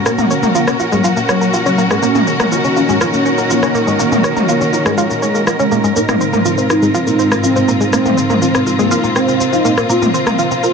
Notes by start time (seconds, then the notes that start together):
Already playing: A#3 C#4 F#4 A#4 F#5
0.06 A#3 D#5, cross-stick, shaker
0.18 A#3, mid tom, shaker
0.31 C#5, shaker
0.43 A#4, mid tom, shaker
0.55 A#3 F4, shaker
0.67 C#4, cross-stick, shaker
0.80 F4, shaker
0.92 F#3 G#3, shaker
1.04 F4, shaker
1.17 A#3, shaker
1.29 F#3 C#5, cross-stick, shaker
1.41 A#4, shaker
1.53 F4, shaker
1.66 F#3 C#4, shaker
1.78 A#3, shaker
1.91 G#3, cross-stick, shaker
2.02 D#3 A#3 C#4 D#4 C#5, shaker
2.15 A#3, mid tom, shaker
2.27 C#5, shaker
2.40 A#4, cross-stick, mid tom, shaker
2.52 F4, shaker
2.64 C#4, shaker
2.76 C#4 F4, shaker
2.89 G#3, shaker
3.01 F4, cross-stick, shaker
3.13 A#3 C#4, shaker
3.26 C#5, shaker
3.38 A#4, shaker
3.50 A#3 F4, shaker
3.63 C#4, cross-stick, shaker
3.75 A#3, shaker
3.87 G#3, shaker
3.99 A#3, shaker
4.12 A#3, mid tom, shaker
4.24 C#5, cross-stick, shaker
4.36 A#4, mid tom, shaker
4.49 A#3 F4, shaker
4.61 C#4, shaker
4.73 F4, shaker
4.86 G#3, cross-stick, shaker
4.98 F4, shaker
5.10 A#3, shaker
5.22 G#3 C#5, shaker
5.35 A#4, shaker
5.47 F4, cross-stick, shaker
5.60 G#3 C#4, shaker
5.72 A#3, shaker
5.84 G#3, shaker
5.96 G#2 G#3 A#3 C4 D#4 C5, shaker
6.07 A#3 C4 F4, cross-stick, mid tom, shaker
6.21 C5, shaker
6.33 A#4, mid tom, shaker
6.45 F4, shaker
6.58 C4, shaker
6.70 D#4 F4, cross-stick, shaker
6.82 G#3, shaker
6.95 F4, shaker
7.07 A#3 D#4, shaker
7.19 C5, shaker
7.31 A#4, cross-stick, shaker
7.44 C4 F4, shaker
7.56 C4, shaker
7.68 A#3, shaker
7.81 G#3, shaker
7.93 A#3 C4 F5, cross-stick, shaker
8.05 A#3, mid tom, shaker
8.17 C5, shaker
8.30 A#4, mid tom, shaker
8.42 C4 F4, shaker
8.54 C4, cross-stick, shaker
8.67 F4, shaker
8.79 G#3 A#3, shaker
8.91 F4, shaker
9.04 A#3, shaker
9.16 C4, cross-stick, shaker
9.28 C4, shaker
9.40 C4, shaker
9.53 D#4 F4, shaker
9.65 A#3, shaker
9.77 A#3, cross-stick, shaker
9.90 A#3 C4 F4, shaker
10.02 A#3, mid tom, shaker
10.14 C5, shaker
10.27 A#4, cross-stick, mid tom, shaker
10.39 F4, shaker
10.51 C4, shaker
10.63 F4 A#4, shaker